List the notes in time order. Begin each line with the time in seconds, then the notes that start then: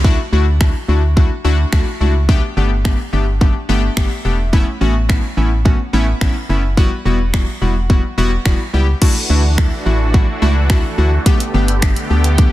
Already playing: C#2
0.04 A3 D4 E4 F#4, kick
0.32 D2 A3 D4 E4 F#4
0.60 A3 D4 E4 F#4, finger snap, kick
0.88 D2 A3 D4 E4 F#4
1.16 A3 D4 E4 F#4, kick
1.44 D2 A3 D4 E4 F#4
1.72 D2 A3 D4 E4 F#4, finger snap, kick
2.00 C#2 A3 D4 E4 F#4
2.28 A3 B3 D4 G4, kick
2.57 G1 A3 B3 D4 G4
2.84 A3 B3 D4 G4, finger snap, kick
3.13 G1 A3 B3 D4 G4
3.41 A3 B3 D4 G4, kick
3.69 G1 A3 B3 D4 G4
3.97 G1 A3 B3 D4 G4 G5, finger snap, kick
4.11 E5
4.25 E1 A3 B3 D4 G4
4.53 A3 B3 C#4 E4, kick
4.81 A1 A3 B3 C#4 F#4
5.09 A3 B3 C#4 E4, finger snap, kick
5.37 A1 A3 B3 C#4 E4
5.65 A3 B3 C#4 F#4, kick
5.93 A1 A3 B3 C#4 E4
6.21 A1 A3 B3 C#4 E4, finger snap, kick
6.49 F#1 A3 B3 C#4 E4
6.77 G3 B3 E4 F#4, kick
7.05 E1 G3 B3 E4 F#4
7.33 G3 B3 E4 F#4, finger snap, kick
7.61 E1 G3 B3 E4 F#4
7.89 G3 B3 E4 F#4, kick
8.17 E1 G3 B3 E4 F#4
8.45 E1 G3 B3 E4 F#4, finger snap, kick
8.73 C#2 G3 B3 E4 G4
9.01 E3 A3 D4 E4 F#4, kick, crash
9.29 D2 A3 D4 E4 F#4
9.58 A3 D4 E4 A4, finger snap, kick
9.86 A1 A3 D4 E4 F#4
10.14 A3 D4 E4 F#4, kick
10.42 C#2 A3 D4 E4 F#4
10.70 A3 D4 E4 F#4, finger snap, kick
10.98 D2 A3 D4 E4 F#4
11.26 D3 A3 B3 D4 G4, kick, closed hi-hat
11.40 closed hi-hat
11.54 G1 A3 B3 D4 G4
11.68 closed hi-hat
11.82 A3 B3 D4 G4, finger snap, kick, closed hi-hat
11.96 closed hi-hat
12.10 D2 A3 B3 D4 G4
12.24 closed hi-hat
12.38 A3 B3 D4 G4, kick, closed hi-hat